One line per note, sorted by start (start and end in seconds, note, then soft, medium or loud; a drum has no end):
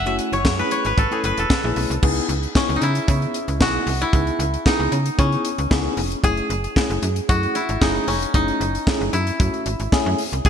0.00 0.20 F#1 loud
0.00 0.27 C#5 medium
0.00 1.20 F#5 loud
0.00 0.96 G#5 loud
0.06 0.35 A3 medium
0.06 0.36 C#4 medium
0.06 0.36 E4 medium
0.06 0.36 F#4 loud
0.06 0.14 E5 medium
0.06 closed hi-hat soft
0.19 closed hi-hat medium
0.32 0.46 F#1 medium
0.32 0.71 C#5 medium
0.32 closed hi-hat soft
0.45 0.63 F#2 loud
0.45 kick loud
0.45 snare loud
0.58 0.88 A3 medium
0.58 0.88 C#4 medium
0.58 0.88 E4 medium
0.58 0.88 G#4 medium
0.58 0.86 B4 medium
0.71 2.37 C#5 medium
0.71 closed hi-hat medium
0.85 0.94 G#1 medium
0.85 1.25 B4 medium
0.85 closed hi-hat medium
0.98 1.07 G#1 medium
0.98 1.18 A4 medium
0.98 kick loud
0.98 closed hi-hat medium
1.11 1.41 A3 medium
1.11 1.41 C#4 medium
1.11 1.41 E4 medium
1.11 1.45 G#4 medium
1.11 1.41 A4 medium
1.11 closed hi-hat soft
1.24 1.33 F#1 loud
1.24 3.03 B4 medium
1.24 closed hi-hat medium
1.38 1.46 E1 medium
1.38 3.30 A4 medium
1.38 closed hi-hat soft
1.50 kick loud
1.50 snare loud
1.64 1.73 A#1 loud
1.64 1.93 A3 medium
1.64 1.94 C#4 medium
1.64 1.94 E4 medium
1.64 1.94 G#4 medium
1.76 1.86 B1 loud
1.76 open hi-hat medium
1.90 1.99 C2 medium
1.90 closed hi-hat medium
2.02 2.21 C#2 loud
2.02 2.32 B3 medium
2.02 2.33 D#4 medium
2.02 2.33 E4 medium
2.02 2.33 G#4 loud
2.02 kick loud
2.02 crash loud
2.17 closed hi-hat soft
2.29 2.47 C#2 loud
2.29 closed hi-hat medium
2.43 closed hi-hat soft
2.55 2.85 B3 medium
2.55 5.08 C#4 medium
2.55 2.85 D#4 medium
2.55 2.85 E4 medium
2.55 2.85 G#4 loud
2.55 kick loud
2.55 snare loud
2.69 2.78 C#2 loud
2.69 closed hi-hat soft
2.76 2.89 D#4 medium
2.82 3.00 C#3 loud
2.82 4.01 E4 loud
2.82 closed hi-hat medium
2.95 closed hi-hat medium
3.07 3.26 C#3 loud
3.07 3.38 B3 medium
3.07 3.38 D#4 medium
3.07 3.38 E4 medium
3.07 3.38 G#4 medium
3.07 kick loud
3.07 closed hi-hat loud
3.22 closed hi-hat soft
3.34 closed hi-hat medium
3.48 3.62 C#2 medium
3.48 closed hi-hat medium
3.60 3.79 B1 loud
3.60 3.90 B3 medium
3.60 3.90 D#4 medium
3.60 3.90 E4 medium
3.60 5.73 F#4 loud
3.60 3.90 G#4 loud
3.60 kick loud
3.60 snare loud
3.87 4.05 C2 medium
3.87 open hi-hat medium
4.01 4.73 E4 loud
4.01 closed hi-hat medium
4.13 4.31 C#2 loud
4.13 4.43 B3 medium
4.13 4.43 D#4 medium
4.13 4.43 E4 medium
4.13 4.43 G#4 medium
4.13 kick loud
4.13 closed hi-hat medium
4.27 closed hi-hat soft
4.39 4.57 C#2 loud
4.39 closed hi-hat medium
4.54 closed hi-hat soft
4.65 4.95 B3 medium
4.65 4.95 D#4 medium
4.65 7.01 D#4 medium
4.65 4.96 E4 medium
4.65 4.96 G#4 medium
4.65 kick loud
4.65 snare loud
4.80 4.88 C#2 medium
4.92 5.10 C#3 loud
4.92 closed hi-hat medium
5.06 closed hi-hat medium
5.18 5.37 C#3 loud
5.18 5.48 B3 medium
5.18 7.70 C#4 medium
5.18 5.48 D#4 medium
5.18 5.48 E4 medium
5.18 5.48 G#4 loud
5.18 kick loud
5.18 closed hi-hat loud
5.32 closed hi-hat soft
5.45 closed hi-hat medium
5.58 5.67 C#2 medium
5.58 closed hi-hat medium
5.70 5.89 C#2 loud
5.70 6.01 B3 medium
5.70 6.01 D#4 medium
5.70 6.01 E4 medium
5.70 6.01 G#4 loud
5.70 kick loud
5.70 snare loud
5.97 6.15 F1 loud
5.97 open hi-hat medium
6.12 closed hi-hat medium
6.23 6.42 F#1 loud
6.23 6.53 A3 medium
6.23 6.53 C#4 medium
6.23 6.54 E4 medium
6.23 6.54 G#4 medium
6.23 8.21 G#4 loud
6.23 kick loud
6.23 closed hi-hat medium
6.37 closed hi-hat soft
6.50 6.68 F#1 loud
6.50 closed hi-hat medium
6.64 closed hi-hat soft
6.76 7.06 A3 medium
6.76 7.06 C#4 medium
6.76 7.06 E4 medium
6.76 7.06 G#4 loud
6.76 kick loud
6.76 snare loud
6.90 6.99 F#1 loud
6.90 closed hi-hat soft
7.03 7.21 F#2 medium
7.03 closed hi-hat medium
7.16 closed hi-hat medium
7.28 7.47 F#2 loud
7.28 7.59 A3 medium
7.28 7.59 C#4 medium
7.28 7.59 E4 medium
7.28 9.40 F#4 loud
7.28 7.59 G#4 medium
7.28 kick loud
7.28 closed hi-hat medium
7.43 closed hi-hat soft
7.55 7.87 E4 medium
7.55 closed hi-hat medium
7.69 7.78 G#1 medium
7.69 closed hi-hat medium
7.81 8.00 F#1 loud
7.81 8.11 A3 medium
7.81 8.11 C#4 medium
7.81 8.34 D#4 medium
7.81 8.12 E4 medium
7.81 8.12 G#4 medium
7.81 kick loud
7.81 snare loud
7.96 closed hi-hat soft
8.08 8.26 F1 loud
8.08 10.50 C#4 medium
8.08 open hi-hat medium
8.22 closed hi-hat medium
8.34 8.52 F#1 loud
8.34 8.64 A3 medium
8.34 8.64 C#4 medium
8.34 9.19 D#4 loud
8.34 8.64 E4 medium
8.34 8.64 G#4 medium
8.34 kick loud
8.34 closed hi-hat medium
8.48 closed hi-hat soft
8.61 8.79 F#1 loud
8.61 closed hi-hat medium
8.75 closed hi-hat soft
8.86 9.17 A3 medium
8.86 9.17 C#4 medium
8.86 9.17 E4 medium
8.86 9.17 G#4 medium
8.86 kick loud
8.86 snare loud
9.01 9.09 F#1 loud
9.01 closed hi-hat soft
9.13 9.31 F#2 medium
9.13 10.50 E4 medium
9.13 closed hi-hat medium
9.27 closed hi-hat medium
9.39 9.49 F#2 medium
9.39 9.69 A3 medium
9.39 9.69 C#4 medium
9.39 9.70 E4 medium
9.39 9.70 F#4 medium
9.39 kick loud
9.39 closed hi-hat medium
9.54 closed hi-hat soft
9.66 9.76 G#1 medium
9.66 closed hi-hat medium
9.80 9.88 G#1 medium
9.80 closed hi-hat medium
9.92 10.22 A3 loud
9.92 10.22 C#4 loud
9.92 10.22 E4 medium
9.92 10.22 G#4 loud
9.92 kick loud
9.92 snare loud
10.06 10.15 F#2 loud
10.18 open hi-hat medium
10.33 10.41 C2 medium
10.33 closed hi-hat medium
10.45 10.50 C#2 loud
10.45 10.50 B3 medium
10.45 10.50 D#4 medium
10.45 10.50 E4 medium
10.45 10.50 G#4 medium
10.45 10.50 G#4 loud
10.45 kick loud
10.45 closed hi-hat medium